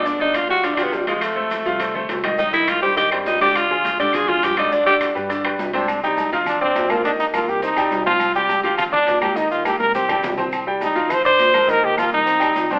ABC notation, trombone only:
X:1
M:4/4
L:1/8
Q:1/4=206
K:Gphr
V:1 name="Trombone"
z8 | z8 | z8 | z8 |
z6 z D- | [K:Cm] D E2 E D C2 F | D E F G E3 F- | F G2 G F D2 G |
E F G B G3 z | z2 E2 c c3 | B G F E4 D |]